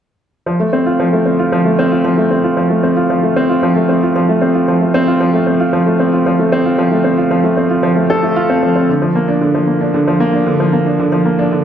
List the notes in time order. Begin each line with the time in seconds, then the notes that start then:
0.46 F3
0.60 A3
0.73 C4
0.86 F4
1.00 F3
1.13 A3
1.26 C4
1.39 F4
1.52 F3
1.65 A3
1.79 C4
1.91 F4
2.04 F3
2.17 A3
2.31 C4
2.44 F4
2.57 F3
2.70 A3
2.83 C4
2.97 F4
3.10 F3
3.23 A3
3.36 C4
3.49 F4
3.63 F3
3.76 A3
3.89 C4
4.03 F4
4.16 F3
4.29 A3
4.41 C4
4.55 F4
4.68 F3
4.81 A3
4.94 C4
5.08 F4
5.20 F3
5.33 A3
5.47 C4
5.60 F4
5.73 F3
5.86 A3
6.00 C4
6.13 F4
6.26 F3
6.39 A3
6.52 C4
6.66 F4
6.78 F3
6.91 A3
7.04 C4
7.18 F4
7.31 F3
7.44 A3
7.57 C4
7.70 F4
7.83 F3
7.96 A3
8.10 A4
8.23 A3
8.36 F4
8.50 C4
8.63 F3
8.76 C4
8.89 D3
9.02 F3
9.15 A#3
9.28 D4
9.41 D3
9.54 F3
9.67 A#3
9.81 D4
9.94 D3
10.07 F3
10.20 A#3
10.33 D4
10.46 D3
10.60 F3
10.73 A#3
10.87 D4
10.99 D3
11.12 F3
11.25 A#3
11.39 D4
11.52 D3